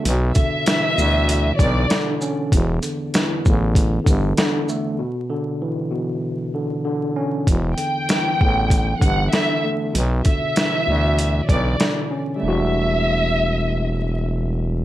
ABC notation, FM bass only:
X:1
M:4/4
L:1/8
Q:"Swing 16ths" 1/4=97
K:Em
V:1 name="FM bass" clef=bass
B,,, z2 D,,2 B,,, z2 | E,,, z2 A,,,2 G,,, z2 | z8 | E,,, z2 A,,,2 G,,, z2 |
B,,, z2 D,,2 B,,, z2 | E,,,8 |]